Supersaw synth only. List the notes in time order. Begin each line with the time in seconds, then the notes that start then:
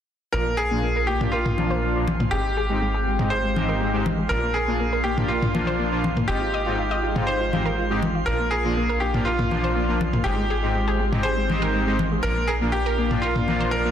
0.34 A#2 F3 A#3 D4 F4
0.71 A#2 F3 A#3 D4 F4
1.21 A#2 F3 A#3 D4 F4
1.58 A#2 F3 A#3 D4 F4
1.95 A#2 F3 A#3 D4 F4
2.32 G#2 G#3 C4 D#4 G4
2.70 G#2 G#3 C4 D#4 G4
3.19 G#2 G#3 C4 D#4 G4
3.56 G#2 G#3 C4 D#4 G4
3.94 G#2 G#3 C4 D#4 G4
4.31 A#2 F3 A#3 D4 F4
4.68 A#2 F3 A#3 D4 F4
5.17 A#2 F3 A#3 D4 F4
5.55 A#2 F3 A#3 D4 F4
5.92 A#2 F3 A#3 D4 F4
6.29 G#2 G#3 C4 D#4 F4
6.66 G#2 G#3 C4 D#4 F4
7.16 G#2 G#3 C4 D#4 F4
7.53 G#2 G#3 C4 D#4 G4
7.90 G#2 G#3 C4 D#4 G4
8.27 A#2 F3 A#3 D4 F4
8.65 A#2 F3 A#3 D4 F4
9.14 A#2 F3 A#3 D4 F4
9.51 A#2 F3 A#3 D4 F4
9.88 A#2 F3 A#3 D4 F4
10.26 G#2 G#3 C4 D#4 G4
10.63 G#2 G#3 C4 D#4 G4
11.12 G#2 G#3 C4 D#4 G4
11.50 G#2 G#3 C4 D#4 G4
11.87 G#2 G#3 C4 D#4 G4
12.24 A#2 F3 A#3 D4 F4
12.61 A#2 F3 A#3 D4 F4
13.11 A#2 F3 A#3 D4 F4
13.48 A#2 F3 A#3 D4 F4
13.85 A#2 F3 A#3 D4 F4